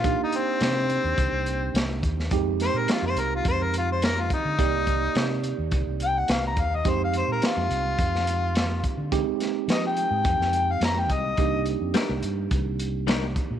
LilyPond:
<<
  \new Staff \with { instrumentName = "Harmonica" } { \time 4/4 \key c \minor \tempo 4 = 106 f'16 ees'16 c'2. r8 | r8 c''16 bes'16 f'16 c''16 bes'16 f'16 c''16 bes'16 f'16 c''16 bes'16 f'16 ees'8~ | ees'4. r4 g''16 fis''16 f''16 bes''16 f''16 ees''16 | c''16 f''16 c''16 bes'16 f'2. |
r4 ees''16 g''4. f''16 bes''16 g''16 ees''8~ | ees''8 r2. r8 | }
  \new Staff \with { instrumentName = "Tine electric piano" } { \time 4/4 \key c \minor <bes d' ees' g'>1 | <aes c' ees' g'>1 | <bes ees' g' d''>1 | <aes c' ees' g'>1 |
<aes c' ees' g'>1 | <bes d' ees' g'>1 | }
  \new Staff \with { instrumentName = "Clean electric guitar" } { \time 4/4 \key c \minor r1 | r1 | r1 | r1 |
r1 | r4 <g d' ees' bes'>8 r4. <g d' ees' bes'>8 r8 | }
  \new Staff \with { instrumentName = "Fingered electric bass" } { \clef bass \time 4/4 \key c \minor bes,16 r8. c8. ees,16 c,16 c,8. c,8 ees,8 | f,8. bes,16 r16 f,16 c,8 f,4.~ f,16 d16 | c,4 c8. ees,16 c,16 c,8. c,8 ees,8 | f,8. bes,16 r16 f,16 c,8 f,4.~ f,16 d16~ |
d16 r8. f8. aes,16 f,16 f,8. f,8 c,8 | c,8. f,16 r16 c,16 g,8 c,4.~ c,16 bes,16 | }
  \new DrumStaff \with { instrumentName = "Drums" } \drummode { \time 4/4 <hh bd>8 hh8 <hh sn>8 hh8 <hh bd>8 hh8 <hh sn>8 <hh bd>16 sn16 | <hh bd>8 <hh sn>8 <hh sn>8 hh8 <hh bd>8 hh8 <hh sn>8 <hh bd>8 | <hh bd>8 <hh bd>8 <hh sn>8 hh8 <hh bd>8 hh8 <hh sn>8 <hh bd>8 | <hh bd>8 hh8 <hh sn>8 hh8 <hh bd>16 sn16 hh8 <hh sn>8 <hh bd>8 |
<hh bd>8 <hh sn>8 <hh sn>8 hh8 <hh bd>16 sn16 hh8 <hh sn>8 <hh bd>8 | <hh bd>8 hh8 <hh sn>8 hh8 <hh bd>8 hh8 <hh sn>8 <hh bd>8 | }
>>